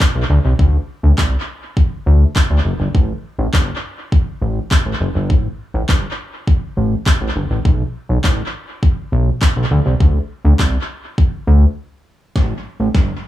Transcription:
0.00 kick, clap
0.15 B1
0.30 D2
0.45 C2
0.59 D2, kick
1.03 D2
1.18 C2, kick, clap
1.77 kick
2.06 D2
2.36 kick, clap
2.50 D2
2.65 F#1
2.80 G1
2.95 A1, kick
3.39 A1
3.54 G1, kick, clap
4.12 kick
4.42 A1
4.71 kick, clap
4.86 A1
5.00 F#1
5.15 G1
5.30 A1, kick
5.74 A1
5.89 G1, kick, clap
6.47 kick
6.77 A1
7.06 kick, clap
7.21 A1
7.36 G1
7.51 A1
7.65 B1, kick
8.09 B1
8.24 A1, kick, clap
8.83 kick
9.12 B1
9.42 kick, clap
9.56 B1
9.71 D2
9.86 C2
10.00 D2, kick
10.45 D2
10.59 C2, kick, clap
11.18 kick
11.47 D2
12.36 A1, kick, snare
12.80 A1
12.94 G1, kick, snare

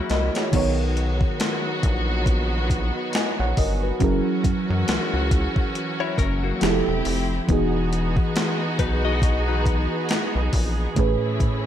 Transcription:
Already playing: E3 G#3 A#3 C#4 E4 F#4 G#4 C#5
0.10 C2 A#4 D#5, snare, closed hi-hat
0.35 G#4 C#5, snare, closed hi-hat
0.52 B1 D#3 F#3 B3 D#4 F#4 A#4, kick, closed hi-hat, crash
0.56 C#5
0.97 closed hi-hat
1.21 kick
1.40 snare, closed hi-hat
1.83 A#1, kick, closed hi-hat
2.26 kick, closed hi-hat
2.70 kick, closed hi-hat
3.13 D#5 G#5, snare, closed hi-hat
3.40 A#1 C#5 F#5
3.57 G1 A#4 D#5, kick, open hi-hat
3.83 F#4 B4
4.00 F#1 E3 F#3 C#4 E4 F#4 G#4, kick, closed hi-hat
4.04 A#4
4.44 F#2, kick, closed hi-hat
4.70 F#2
4.88 C#2, snare, closed hi-hat
5.14 C#2
5.31 kick, closed hi-hat
5.56 kick
5.75 closed hi-hat
6.00 E4 C#5
6.18 F#1 C#4 A#4, kick, closed hi-hat
6.44 A#3 F#4
6.61 F1 F3 A3 C4 E4 G4 G#4, snare, closed hi-hat
6.70 A4
6.88 E1
7.05 F1, open hi-hat
7.47 E1 E3 B3 D#4 F#4 G#4, kick, closed hi-hat
7.52 G#4
7.93 closed hi-hat
8.17 kick
8.36 snare, closed hi-hat
8.79 B1 D#4 B4, kick, closed hi-hat
9.05 F#4 D#5
9.22 kick, closed hi-hat
9.48 D#4 B4
9.66 kick, closed hi-hat
10.09 snare, closed hi-hat
10.35 B1
10.53 A#1, kick, open hi-hat
10.95 A1 A2 E3 A3 C#4 E4 G#4, kick, closed hi-hat
11.00 B4
11.40 A2, kick, closed hi-hat

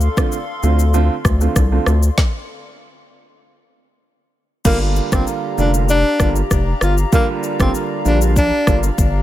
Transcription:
Already playing: A4 D5 F5 C6
0.01 shaker
0.17 D3 A3 C4 F4, kick, cross-stick, shaker
0.32 shaker
0.63 D2 D3 A3 C4 F4, shaker
0.79 shaker
0.94 D3 A3 C4 F4, shaker
1.25 D2, kick, cross-stick, shaker
1.41 D3 A3 C4 F4, shaker
1.56 C2, kick, cross-stick, shaker
1.72 D3 A3 C4 F4
1.86 D2, cross-stick, shaker
2.03 shaker
2.18 kick, snare
4.65 G1 D3 G3 A#3 F4 G4 D5 F5 A#5, kick, crash, shaker
4.96 shaker
5.12 G1 D3 G3 A#3 C4 F4, kick, cross-stick, shaker
5.27 shaker
5.58 F1 D3 G3 A#3 D4 F4, shaker
5.74 shaker
5.89 D4, shaker
6.19 G1 D3 G3 A#3 F4, kick, cross-stick, shaker
6.36 shaker
6.51 F1, kick, cross-stick, shaker
6.81 G1 F4, cross-stick, shaker
6.98 shaker
7.12 D3 G3 A#3 F4, kick, shaker
7.43 shaker
7.59 G1 D3 G3 A#3 C4 F4, kick, cross-stick, shaker
7.75 shaker
8.05 A#1 D3 G3 A#3 D4 F4, shaker
8.22 shaker
8.36 D4, kick, shaker
8.67 G1 D3 G3 A#3 F4, kick, cross-stick, shaker
8.83 shaker
8.98 G1, kick, shaker

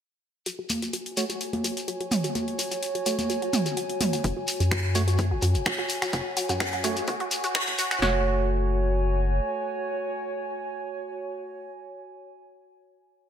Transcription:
0.46 F#4, closed hi-hat, shekere
0.59 F#4
0.69 G#5, open hi-hat, high conga, shekere
0.82 F#4, closed hi-hat, shekere
0.93 F#4, closed hi-hat, shekere
1.04 C#5, closed hi-hat
1.17 A3 F#4 C#5, open hi-hat, shekere
1.29 F#4, closed hi-hat, shekere
1.41 closed hi-hat, shekere
1.53 F#4, closed hi-hat, high conga
1.64 F#4, open hi-hat, shekere
1.77 closed hi-hat, shekere
1.88 F#4, closed hi-hat, shekere
2.01 F#4, closed hi-hat
2.11 mid tom, open hi-hat, shekere
2.24 F#4, closed hi-hat, shekere
2.35 F#4, closed hi-hat, high conga, shekere
2.48 closed hi-hat
2.59 F#4, open hi-hat, shekere
2.71 F#4, closed hi-hat, shekere
2.83 closed hi-hat, shekere
2.95 F#4, closed hi-hat
3.06 A3 F#4 C#5, open hi-hat, shekere
3.19 closed hi-hat, high conga, shekere
3.30 F#4, closed hi-hat, shekere
3.42 F#4, closed hi-hat
3.53 mid tom, open hi-hat, shekere
3.66 F#4, closed hi-hat, shekere
3.77 F#4, closed hi-hat, shekere
3.90 closed hi-hat
4.00 F#4, mid tom, open hi-hat, high conga, shekere
4.13 F#4, closed hi-hat, shekere
4.24 F#1 F#4, kick, closed hi-hat, shekere
4.37 F#4
4.48 open hi-hat, shekere
4.60 F#2 F#4, closed hi-hat, shekere
4.71 F#4, finger snap, kick, closed hi-hat, shekere
4.95 A3 F#4 C#5, open hi-hat, shekere
5.08 F#4, closed hi-hat, shekere
5.18 kick, closed hi-hat, shekere
5.31 F#1 F#4
5.42 F#2 F#4, open hi-hat, shekere
5.55 E1, closed hi-hat, shekere
5.65 F#4, finger snap, kick, closed hi-hat, shekere
5.78 F#4
5.89 open hi-hat, shekere
6.02 F#4, finger snap, closed hi-hat, shekere
6.13 F#1 F#4, kick, closed hi-hat, shekere
6.37 F#4, open hi-hat, shekere
6.49 F#2 F#4, closed hi-hat, shekere
6.60 finger snap, kick, closed hi-hat, shekere
6.73 F#4, closed hi-hat
6.84 A3 F#4 C#5, open hi-hat, shekere
6.97 closed hi-hat, shekere
7.07 E1 F#4, kick, closed hi-hat, shekere
7.20 F#4, closed hi-hat
7.31 open hi-hat, shekere
7.44 F#4, closed hi-hat, shekere
7.55 F#4, finger snap, kick, closed hi-hat, shekere
7.68 A1, closed hi-hat
7.78 F#4, open hi-hat, shekere
7.91 F#1 F#4, finger snap, closed hi-hat, shekere
8.02 F#1 A3 F#4 C#5, snare
8.10 C#5
8.17 G#5

